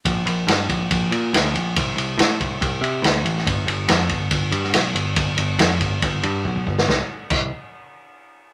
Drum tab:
CC |----------------|----------------|----------------|----------------|
RD |x-x-x-x-x-x-x-x-|x-x-x-x-x-x-x-x-|x-x-x-x-x-x-x-x-|x-x-x-x-x-x-----|
SD |----o-------o---|----o-------o--o|----o------oo---|----o----------o|
BD |o-----o-o-------|o-----o-o-------|o-----o-o-------|o-----o-o---ooo-|

CC |----x-----------|
RD |----------------|
SD |o---------------|
BD |o---o-----------|